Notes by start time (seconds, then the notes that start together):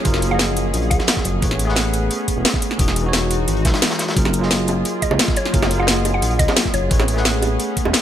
Already playing: F#3 A#3 C#4 F4 G#4 A#4 D#5
0.04 F#1 F#3 F4 G#4 A#4, kick, closed hi-hat
0.14 snare
0.22 closed hi-hat
0.28 F3 F#3 F#5
0.32 G#4 D#5
0.39 snare, closed hi-hat
0.56 closed hi-hat
0.73 A#1, closed hi-hat
0.82 closed hi-hat
0.90 C#2 F#5, kick, closed hi-hat
0.99 snare
1.07 snare, closed hi-hat
1.17 kick, snare
1.24 F#1, closed hi-hat
1.41 A1 A3 B3 C#4 G#4 B4 C#5, kick, closed hi-hat
1.51 snare
1.59 closed hi-hat
1.65 A3 G#4, snare
1.69 B4 F#5
1.76 snare, closed hi-hat
1.93 closed hi-hat
2.11 closed hi-hat
2.28 kick, closed hi-hat
2.36 E1
2.45 snare, closed hi-hat
2.54 kick, snare
2.62 closed hi-hat
2.71 snare
2.78 E1 E3 G#3 D#4 F#4 G#4, kick, closed hi-hat
2.88 snare
2.96 closed hi-hat
3.02 E3 D#4
3.06 F#4 C#5
3.13 snare, closed hi-hat
3.31 closed hi-hat
3.48 G#1, closed hi-hat
3.57 closed hi-hat
3.65 B1, kick, snare, closed hi-hat
3.74 snare, closed hi-hat
3.82 snare, closed hi-hat
3.90 snare, closed hi-hat
3.99 snare, closed hi-hat
4.08 snare, closed hi-hat
4.15 F#1 F#3 A#3 F4 G#4 A#4, kick, closed hi-hat
4.25 snare, high bongo
4.33 closed hi-hat
4.39 F#3 F4, snare
4.43 G#4 D#5
4.51 snare, closed hi-hat
4.67 closed hi-hat, high bongo
4.85 closed hi-hat
5.02 D#5, kick, closed hi-hat
5.11 C#2, high bongo
5.19 snare, closed hi-hat
5.28 kick, snare
5.37 C#5, closed hi-hat
5.45 snare
5.52 F#1 F#3 F4 G#4 A#4, kick, closed hi-hat
5.62 snare, high bongo
5.71 closed hi-hat
5.76 F#3 F4 F#5
5.80 G#4 D#5
5.87 snare, closed hi-hat
6.05 closed hi-hat, high bongo
6.14 F#5
6.22 A#1, closed hi-hat
6.31 closed hi-hat
6.39 C#2 D#5, kick, closed hi-hat
6.48 snare, high bongo
6.56 snare, closed hi-hat
6.65 kick, snare
6.74 F#1 C#5, closed hi-hat
6.89 A1 A3 B3 C#4 G#4 B4 C#5, kick, closed hi-hat
7.00 snare, high bongo
7.08 closed hi-hat
7.13 A3 G#4, snare
7.18 B4 F#5
7.25 snare, closed hi-hat
7.42 closed hi-hat, high bongo
7.59 closed hi-hat
7.77 kick, closed hi-hat
7.85 E1, high bongo
7.93 snare, closed hi-hat